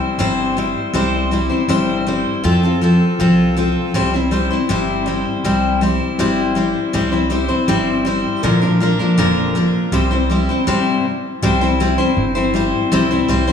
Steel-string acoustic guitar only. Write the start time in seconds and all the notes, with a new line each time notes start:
Already playing: G3 C4 E4 C5
0.19 C3 G3 C4 E4 C5
0.57 G3 C4 E4 C5
0.94 C3 G3 C4 E4 C5
1.31 G3 C4 E4 C5
1.49 C4 E4 C5
1.69 C3 G3 C4 E4 C5
2.07 G3 C4 E4 C5
2.44 F3 C4 F4 A4
2.63 C4 F4 A4
2.81 F3 C4 F4 A4
3.20 F3 C4 F4 A4
3.56 F3 C4 F4 A4
3.94 C3 G3 C4 E4 C5
4.13 C4 E4 C5
4.31 G3 C4 E4 C5
4.50 C4 E4 C5
4.69 C3 G3 C4 E4 C5
5.06 G3 C4 E4 C5
5.44 C3 G3 C4 E4 C5
5.81 G3 C4 E4 C5
6.19 C3 G3 C4 E4 C5
6.55 G3 C4 E4 C5
6.93 C3 G3 C4 E4 C5
7.12 C4 E4 C5
7.30 G3 C4 E4 C5
7.48 C4 E4 C5
7.68 C3 G3 C4 E4 C5
8.05 G3 C4 E4 C5
8.43 A#2 D3 F3 A#3 D4 A#4
8.62 F3 A#3 D4 A#4
8.80 F3 A#3 D4 A#4
8.99 F3 A#3 D4 A#4
9.18 A#2 D3 F3 A#3 D4 A#4
9.55 F3 A#3 D4 A#4
9.92 C3 G3 C4 E4 C5
10.11 C4 E4 C5
10.30 G3 C4 E4 C5
10.49 C4 E4 C5
10.67 C3 G3 C4 E4 C5
11.42 C3 G3 C4 E4 C5
11.61 C4 E4 C5
11.80 G3 C4 E4 C5
11.98 C4 E4 C5
12.35 C4 E4 C5
12.54 G3 C4 E4 C5
12.92 C3 G3 C4 E4 C5
13.11 C4 E4 C5
13.28 G3 C4 E4 C5
13.47 E4 C5